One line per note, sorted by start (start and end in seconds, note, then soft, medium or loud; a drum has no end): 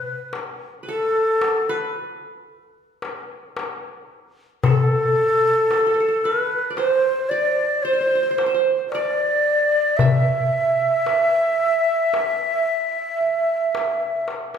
0.00 0.33 B4 medium
0.00 0.37 B4 medium
0.33 darbuka tek medium
0.83 1.69 B4 soft
0.87 1.91 A4 medium
0.87 2.06 A4 medium
0.87 darbuka ka soft
1.41 darbuka tek medium
1.69 2.79 B4 medium
3.02 darbuka tek medium
3.57 darbuka tek medium
4.64 6.26 A4 medium
4.64 5.71 A4 medium
4.64 darbuka dum medium
5.17 darbuka ka soft
5.71 5.78 A4 medium
5.71 darbuka tek medium
5.79 5.86 A4 soft
5.86 5.94 A4 medium
5.94 6.00 A4 soft
6.00 6.08 A4 soft
6.08 7.26 A4 soft
6.24 6.77 B4 medium
6.24 6.84 B4 medium
6.24 darbuka ka soft
6.70 7.31 D5 soft
6.77 7.31 C5 medium
6.77 7.83 C5 medium
6.77 darbuka tek medium
7.29 7.85 D5 medium
7.29 8.30 D5 medium
7.83 8.64 C5 medium
7.83 7.93 C5 medium
7.93 8.00 C5 soft
8.01 8.07 C5 medium
8.07 8.15 C5 soft
8.15 8.22 C5 medium
8.23 8.30 C5 soft
8.31 8.37 C5 medium
8.38 8.46 C5 soft
8.38 darbuka tek medium
8.46 8.54 C5 medium
8.54 9.60 C5 medium
8.90 9.99 D5 medium
8.90 darbuka tek soft
8.95 10.04 D5 medium
9.97 14.27 E5 loud
9.97 14.25 E5 medium
9.97 darbuka dum medium
11.06 darbuka tek medium
12.14 darbuka tek medium
13.21 darbuka ka soft
13.75 darbuka tek medium
14.02 darbuka ka soft
14.28 darbuka tek soft
14.54 darbuka ka soft